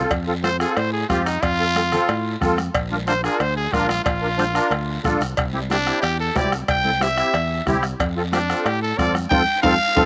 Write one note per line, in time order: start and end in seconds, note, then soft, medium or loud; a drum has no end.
0.00 0.11 C4 medium
0.00 0.11 F4 medium
0.00 0.11 A4 medium
0.11 0.64 F2 medium
0.11 bombo low medium
0.11 bombo rim medium
0.11 cowbell medium
0.11 high conga soft
0.11 long guiro medium
0.27 0.33 C4 medium
0.27 0.33 F4 medium
0.27 0.34 A4 medium
0.43 0.49 C4 medium
0.43 0.49 F4 medium
0.43 0.50 A4 medium
0.43 0.60 C5 medium
0.43 bombo rim medium
0.43 high conga medium
0.43 short guiro medium
0.59 0.77 C4 medium
0.59 0.78 F4 medium
0.59 0.78 G#4 medium
0.59 0.78 A4 medium
0.59 bombo rim medium
0.59 short guiro medium
0.76 1.03 A2 medium
0.76 0.92 C5 medium
0.76 bombo rim medium
0.76 cowbell medium
0.76 high conga soft
0.76 long guiro medium
0.92 1.09 G#4 medium
1.09 1.36 F2 medium
1.09 1.27 C4 medium
1.09 1.27 F4 medium
1.09 1.25 F4 medium
1.09 1.27 G4 medium
1.09 bombo low medium
1.09 bombo rim medium
1.09 high conga medium
1.09 short guiro medium
1.25 1.43 D#4 medium
1.25 bombo rim medium
1.25 short guiro medium
1.42 1.96 F2 medium
1.42 2.38 F4 loud
1.42 bombo low medium
1.42 bombo rim medium
1.42 cowbell loud
1.42 high conga soft
1.42 long guiro medium
1.59 1.65 C4 medium
1.59 1.65 F4 medium
1.59 1.65 A4 medium
1.75 1.82 C4 medium
1.75 1.82 F4 medium
1.75 1.82 A4 medium
1.75 bombo rim medium
1.75 high conga medium
1.75 short guiro medium
1.92 2.10 C4 medium
1.92 2.10 F4 medium
1.92 2.10 A4 medium
1.92 bombo rim medium
1.92 low conga medium
1.92 short guiro medium
2.09 2.35 A2 medium
2.09 bombo rim medium
2.09 cowbell medium
2.09 high conga soft
2.09 long guiro medium
2.41 2.68 F2 medium
2.41 2.58 C4 medium
2.41 2.58 F4 medium
2.41 2.59 A4 loud
2.41 bombo low medium
2.41 bombo rim medium
2.41 high conga medium
2.41 low conga medium
2.41 short guiro medium
2.58 bombo rim medium
2.58 high conga medium
2.58 short guiro medium
2.74 3.27 A#1 medium
2.74 bombo low medium
2.74 bombo rim medium
2.74 cowbell loud
2.74 high conga soft
2.74 long guiro medium
2.91 2.97 D4 medium
2.91 2.97 F4 medium
2.91 2.97 A#4 medium
2.91 high conga medium
3.07 3.13 D4 medium
3.07 3.13 F4 medium
3.07 3.13 A#4 medium
3.07 3.24 C5 medium
3.07 bombo rim medium
3.07 high conga medium
3.07 short guiro medium
3.23 3.41 D4 medium
3.23 3.41 F4 medium
3.23 3.42 G#4 medium
3.23 3.41 A#4 medium
3.23 bombo rim medium
3.23 short guiro medium
3.40 3.66 D2 medium
3.40 3.56 C5 medium
3.40 bombo rim medium
3.40 cowbell medium
3.40 high conga soft
3.40 long guiro medium
3.56 3.74 G#4 medium
3.72 3.99 A#1 medium
3.72 3.90 D4 medium
3.72 3.89 F4 medium
3.72 3.90 F4 medium
3.72 3.91 A#4 medium
3.72 bombo low medium
3.72 bombo rim medium
3.72 high conga medium
3.72 short guiro medium
3.89 4.04 F4 medium
3.89 bombo rim medium
3.89 high conga medium
3.89 short guiro medium
4.04 4.59 A#1 loud
4.04 5.01 F4 medium
4.04 bombo low medium
4.04 bombo rim medium
4.04 cowbell loud
4.04 high conga soft
4.04 long guiro medium
4.21 4.28 D4 medium
4.21 4.28 F4 medium
4.21 4.28 A#4 medium
4.37 4.44 D4 medium
4.37 4.44 F4 medium
4.37 4.44 C5 medium
4.37 bombo rim medium
4.37 high conga medium
4.37 short guiro medium
4.54 4.72 D4 medium
4.54 4.72 F4 medium
4.54 4.72 A#4 medium
4.54 bombo rim medium
4.54 short guiro medium
4.71 4.97 D2 medium
4.71 bombo rim medium
4.71 cowbell medium
4.71 high conga soft
4.71 long guiro medium
5.04 5.19 A#1 medium
5.04 5.21 D4 medium
5.04 5.21 F4 medium
5.04 5.22 A4 medium
5.04 bombo low medium
5.04 bombo rim medium
5.04 high conga medium
5.04 low conga medium
5.04 short guiro medium
5.20 5.35 C2 medium
5.20 bombo rim medium
5.20 short guiro medium
5.37 5.90 C2 medium
5.37 bombo low medium
5.37 bombo rim medium
5.37 cowbell loud
5.37 high conga soft
5.37 long guiro medium
5.53 5.59 C4 medium
5.53 5.59 E4 medium
5.53 5.60 G4 medium
5.53 high conga medium
5.69 5.76 C4 medium
5.69 6.01 D4 loud
5.69 5.76 E4 medium
5.69 5.76 G4 medium
5.69 bombo rim medium
5.69 high conga medium
5.69 short guiro medium
5.85 6.03 C4 medium
5.85 6.04 E4 medium
5.85 6.04 G4 medium
5.85 bombo rim medium
5.85 short guiro medium
6.02 6.29 E2 medium
6.02 6.19 G4 medium
6.02 bombo rim medium
6.02 cowbell medium
6.02 high conga soft
6.02 long guiro medium
6.20 6.38 A4 medium
6.35 6.62 C2 medium
6.35 6.53 C4 medium
6.35 6.53 E4 medium
6.35 6.53 G4 medium
6.35 6.52 D5 medium
6.35 bombo low medium
6.35 bombo rim medium
6.35 high conga medium
6.35 low timbale medium
6.35 short guiro medium
6.52 bombo rim medium
6.52 high conga medium
6.52 short guiro medium
6.68 7.21 C2 medium
6.68 7.04 G5 medium
6.68 bombo low medium
6.68 bombo rim medium
6.68 cowbell loud
6.68 high conga soft
6.68 long guiro medium
6.84 6.91 C4 medium
6.84 6.91 E4 medium
6.84 6.91 A4 medium
6.84 high conga medium
7.00 7.07 C4 medium
7.00 7.07 E4 medium
7.00 7.07 G4 medium
7.00 7.66 E5 medium
7.00 bombo rim medium
7.00 high conga loud
7.00 short guiro medium
7.17 7.35 C4 medium
7.17 7.35 E4 medium
7.17 7.35 G4 medium
7.17 bombo rim medium
7.17 short guiro medium
7.34 7.60 E2 medium
7.34 bombo rim medium
7.34 cowbell medium
7.34 high conga soft
7.34 long guiro medium
7.66 7.93 C2 medium
7.66 7.84 C4 medium
7.66 7.84 E4 medium
7.66 7.84 G4 loud
7.66 bombo low medium
7.66 bombo rim medium
7.66 high conga medium
7.66 low conga medium
7.66 short guiro medium
7.83 bombo rim medium
7.83 short guiro medium
8.00 8.52 F2 medium
8.00 bombo low medium
8.00 bombo rim medium
8.00 cowbell loud
8.00 high conga soft
8.00 long guiro medium
8.16 8.22 C4 medium
8.16 8.22 F4 medium
8.16 8.23 A4 medium
8.32 8.39 C4 medium
8.32 8.67 D4 medium
8.32 8.39 F4 medium
8.32 8.39 G4 medium
8.32 bombo rim medium
8.32 high conga loud
8.32 short guiro medium
8.50 8.67 C4 medium
8.50 8.67 F4 medium
8.50 8.67 A4 medium
8.50 bombo rim medium
8.50 short guiro medium
8.65 8.92 A2 loud
8.65 8.82 G4 medium
8.65 bombo rim medium
8.65 cowbell medium
8.65 high conga soft
8.65 long guiro medium
8.82 8.99 A4 medium
8.98 9.25 F2 medium
8.98 9.16 C4 medium
8.98 9.16 F4 medium
8.98 9.16 A4 medium
8.98 9.14 D5 medium
8.98 bombo low medium
8.98 bombo rim medium
8.98 high conga medium
8.98 short guiro medium
9.15 bombo rim medium
9.15 high conga medium
9.15 short guiro medium
9.30 9.44 F2 medium
9.30 9.42 C4 medium
9.30 9.42 F4 loud
9.30 9.42 A4 loud
9.30 9.62 G5 medium
9.30 bombo low loud
9.30 high conga medium
9.30 high timbale medium
9.30 long guiro medium
9.62 9.76 F2 loud
9.62 9.75 C4 loud
9.62 9.75 F4 loud
9.62 9.75 A4 loud
9.62 10.05 F5 loud
9.62 bombo low medium
9.62 high conga loud
9.62 high timbale loud
9.62 long guiro loud
9.96 10.05 F2 loud
9.96 10.05 C4 loud
9.96 10.05 F4 medium
9.96 10.05 A4 loud
9.96 bombo low medium
9.96 high conga loud
9.96 high timbale medium